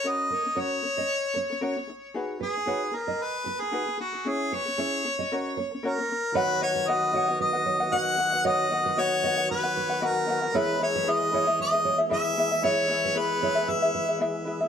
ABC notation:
X:1
M:4/4
L:1/16
Q:"Swing 16ths" 1/4=114
K:B
V:1 name="Harmonica"
d4 c8- c2 z2 | z2 G4 A2 B3 G3 F2 | G2 c8 z2 A4 | B2 c2 d4 d4 f4 |
d4 c4 B4 A4 | B2 c2 d4 d4 e4 | c4 B4 e4 z4 |]
V:2 name="Nylon-string guitar"
z2 A z c z2 d2 z c z4 z | z2 B z c z2 d2 z B z4 z | z2 B z c z2 d2 z c z4 z | c2 z B2 z c z B2 c z d3 z |
c2 z B2 z c z B2 B z4 z | c2 z B2 z c z B2 c z e3 z | c2 z B2 z c z B2 B z4 z |]
V:3 name="Ukulele"
[CFAc]2 [CA] [CA] [CFAc]2 [CA] [CA]2 z [CA] [CA] [CFAc] z [DG]2 | [DFGB]2 [DG] [DG] [DFGB]2 [DG] [DG]2 z [DG] [DG] [DFGB] [DG] [DG] [DG] | [CEGc]2 G [CG] [CEGc]2 [CG] [CG] [CFAc]2 [CA] [CA] [CFAc] [CA] [CA]2 | [FBdf]2 [FBdf]2 [FBdf]2 [FBdf] [FBf]2 [FBf]2 [FBf] [FBdf]2 [FBdf] [FBf] |
[FBdf]2 [FBdf]2 [FBdf]2 [FBdf] [FBf]2 [FBf]2 [FBf] [FBdf]2 [FBdf] [FBf] | [EGBe]2 [EGBe]2 [EGBe]2 [EGBe] [EGe]2 [EGe]2 [EGe] [EGBe]2 [EGBe] [EGe] | [EGBe]2 [EGBe]2 [EGBe]2 [EGBe] [EGe]2 [EGe]2 [EGe] [EGBe]2 [EGBe] [EGe] |]
V:4 name="Tonewheel organ"
z16 | z16 | z16 | [D,F,B,F]16- |
[D,F,B,F]16 | [E,G,B,G]16- | [E,G,B,G]16 |]